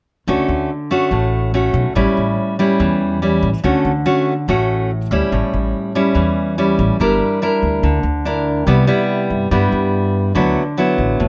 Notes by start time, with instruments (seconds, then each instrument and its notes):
0.27 upright bass D2, nylon-string guitar D3 A3 C#4 F#4
0.48 upright bass D2
0.91 nylon-string guitar A3 C#4 F#4
1.11 upright bass A1, nylon-string guitar A2
1.54 nylon-string guitar A3 C#4 F#4
1.74 upright bass B1
1.95 upright bass A1, nylon-string guitar A2 G3 C#4 E4
2.17 upright bass A1
2.59 nylon-string guitar G3 C#4 E4
2.80 upright bass E2, nylon-string guitar E3
3.22 nylon-string guitar G3 C#4 E4
3.43 upright bass A1
3.64 upright bass D2, nylon-string guitar D3 A3 C#4 F#4
3.85 upright bass D2
4.06 nylon-string guitar A3 C#4 F#4
4.48 upright bass A1, nylon-string guitar A2 A3 C#4 F#4
5.11 upright bass D2, nylon-string guitar G3 C#4 E4
5.32 upright bass A1, nylon-string guitar A2
5.53 upright bass A1
5.95 nylon-string guitar G3 C#4 E4
6.15 upright bass E2, nylon-string guitar E3
6.58 nylon-string guitar G3 C#4 E4
6.79 upright bass A1
7.00 upright bass G1, nylon-string guitar G3 D4 E4 A#4
7.42 nylon-string guitar D4 E4 A#4
7.62 upright bass D2
7.83 upright bass D2, nylon-string guitar D3
8.03 upright bass D2
8.25 nylon-string guitar D4 E4 A#4
8.67 upright bass C2, nylon-string guitar C3 G3 B3 E4
8.87 nylon-string guitar G3 B3 E4
9.30 upright bass G2
9.51 upright bass G2, nylon-string guitar G2 G3 B3 E4
9.72 upright bass G2
10.35 upright bass D2, nylon-string guitar D3 F#3 B3 E4
10.78 nylon-string guitar F#3 B3 E4
10.98 upright bass A1
11.20 upright bass A1, nylon-string guitar A2